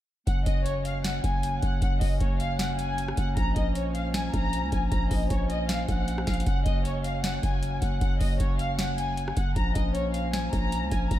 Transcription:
0.27 0.46 F#1 loud
0.27 3.34 F#3 medium
0.27 9.39 A#3 medium
0.27 9.39 C#4 medium
0.27 0.42 F#5 medium
0.27 kick loud
0.27 closed hi-hat medium
0.46 1.21 F#1 loud
0.46 0.61 D#5 loud
0.46 kick loud
0.46 closed hi-hat medium
0.66 0.80 C#5 medium
0.66 closed hi-hat medium
0.85 1.00 F5 medium
0.85 closed hi-hat medium
1.04 1.19 F#5 medium
1.04 snare loud
1.04 closed hi-hat medium
1.24 1.61 F#1 loud
1.24 1.60 G#5 medium
1.24 kick medium
1.24 closed hi-hat medium
1.43 closed hi-hat medium
1.62 1.81 F#1 loud
1.62 1.77 F#5 medium
1.62 kick medium
1.62 closed hi-hat medium
1.82 2.01 F#1 loud
1.82 1.96 F#5 medium
1.82 kick loud
1.82 closed hi-hat medium
2.01 2.20 F#1 loud
2.01 2.16 D#5 medium
2.01 kick loud
2.01 open hi-hat medium
2.20 3.14 F#1 loud
2.20 2.35 C#5 medium
2.20 kick loud
2.20 closed hi-hat medium
2.40 2.55 F5 medium
2.40 closed hi-hat medium
2.59 2.74 F#5 medium
2.59 snare loud
2.59 closed hi-hat medium
2.79 3.15 G#5 medium
2.79 closed hi-hat medium
2.98 closed hi-hat medium
3.08 cross-stick loud
3.17 3.36 F#1 loud
3.17 3.32 F#5 medium
3.17 kick medium
3.17 closed hi-hat medium
3.37 3.55 A#1 loud
3.37 6.43 F3 medium
3.37 3.52 A#5 medium
3.37 kick loud
3.37 closed hi-hat medium
3.56 4.30 A#1 loud
3.56 3.71 D#5 medium
3.56 kick loud
3.56 closed hi-hat medium
3.75 3.90 C#5 medium
3.75 closed hi-hat medium
3.95 4.10 F5 medium
3.95 closed hi-hat medium
4.14 4.29 G#5 medium
4.14 snare loud
4.14 closed hi-hat medium
4.34 4.65 A#1 loud
4.34 4.70 A#5 medium
4.34 kick medium
4.34 closed hi-hat medium
4.53 closed hi-hat medium
4.63 4.72 C#2 loud
4.72 4.91 A#1 loud
4.72 4.87 G#5 medium
4.72 kick medium
4.72 closed hi-hat medium
4.92 5.10 A#1 loud
4.92 5.06 A#5 medium
4.92 kick loud
4.92 closed hi-hat medium
5.11 5.30 A#1 loud
5.11 5.26 D#5 medium
5.11 kick loud
5.11 open hi-hat medium
5.30 5.86 A#1 loud
5.30 5.45 C#5 medium
5.30 kick medium
5.30 closed hi-hat medium
5.50 5.64 D#5 medium
5.50 closed hi-hat medium
5.69 5.84 F5 medium
5.69 snare loud
5.69 closed hi-hat medium
5.88 6.26 A#1 loud
5.88 6.25 F#5 medium
5.88 kick medium
5.88 closed hi-hat medium
6.08 closed hi-hat medium
6.18 cross-stick loud
6.27 6.46 A#1 loud
6.27 6.42 F5 medium
6.27 kick medium
6.27 snare medium
6.27 closed hi-hat medium
6.34 closed hi-hat medium
6.40 closed hi-hat medium
6.46 6.65 F#1 loud
6.46 9.39 F#3 medium
6.46 6.61 F#5 medium
6.46 kick loud
6.46 closed hi-hat medium
6.66 7.40 F#1 loud
6.66 6.80 D#5 loud
6.66 kick loud
6.66 closed hi-hat medium
6.85 7.00 C#5 medium
6.85 closed hi-hat medium
7.04 7.19 F5 medium
7.04 closed hi-hat medium
7.24 7.39 F#5 medium
7.24 snare loud
7.24 closed hi-hat medium
7.43 7.80 F#1 loud
7.43 7.80 G#5 medium
7.43 kick medium
7.43 closed hi-hat medium
7.63 closed hi-hat medium
7.82 8.01 F#1 loud
7.82 7.97 F#5 medium
7.82 kick medium
7.82 closed hi-hat medium
8.01 8.20 F#1 loud
8.01 8.16 F#5 medium
8.01 kick loud
8.01 closed hi-hat medium
8.21 8.39 F#1 loud
8.21 8.35 D#5 medium
8.21 kick loud
8.21 open hi-hat medium
8.40 9.33 F#1 loud
8.40 8.55 C#5 medium
8.40 kick medium
8.40 closed hi-hat medium
8.59 8.74 F5 medium
8.59 closed hi-hat medium
8.79 8.93 F#5 medium
8.79 snare loud
8.79 closed hi-hat medium
8.98 9.34 G#5 medium
8.98 closed hi-hat medium
9.17 closed hi-hat loud
9.28 cross-stick loud
9.37 9.55 F#1 loud
9.37 9.51 F#5 medium
9.37 kick medium
9.37 closed hi-hat medium
9.56 9.75 A#1 loud
9.56 11.19 F3 medium
9.56 11.19 A#3 medium
9.56 11.19 C#4 medium
9.56 9.71 A#5 medium
9.56 kick loud
9.56 closed hi-hat medium
9.75 10.50 A#1 loud
9.75 9.90 D#5 medium
9.75 kick loud
9.75 closed hi-hat medium
9.95 10.10 C#5 medium
9.95 closed hi-hat medium
10.14 10.29 F5 medium
10.14 closed hi-hat medium
10.33 10.48 G#5 medium
10.33 snare loud
10.33 closed hi-hat medium
10.53 10.84 A#1 loud
10.53 10.89 A#5 medium
10.53 kick medium
10.53 closed hi-hat medium
10.72 closed hi-hat medium
10.82 10.91 C#2 loud
10.91 11.10 A#1 loud
10.91 11.06 G#5 medium
10.91 kick medium
10.91 closed hi-hat medium
11.11 11.19 A#1 loud
11.11 11.19 A#5 medium
11.11 kick loud
11.11 closed hi-hat medium

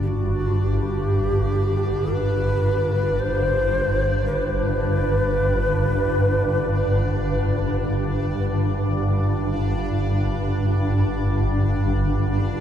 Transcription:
0.00 12.60 G1 medium
0.00 12.60 G2 medium
0.00 12.60 D4 medium
0.00 0.09 G4 medium
0.00 12.60 D5 medium
0.08 0.55 F#4 medium
0.55 0.67 F#4 medium
0.67 2.14 G4 medium
2.12 3.21 B4 medium
3.19 4.25 C5 loud
4.26 7.90 B4 loud

